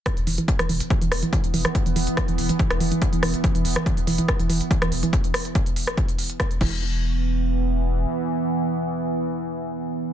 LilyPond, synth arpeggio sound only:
\new Staff \with { instrumentName = "Synth arpeggio sound" } { \clef bass \time 4/4 \key c \lydian \tempo 4 = 142 e16 r16 e16 e16 r16 e16 e16 r16 e16 e16 r16 e16 e16 r16 e16 e16 | r16 e16 e16 r16 e16 e16 r16 e16 e16 r16 e16 e16 r16 e16 e16 r16 | e16 e16 r16 e16 e16 r16 e16 e16 r16 e16 e16 r16 e16 e16 r16 e16 | r2. r8 e8~ |
e8 r2. r8 | r1 | }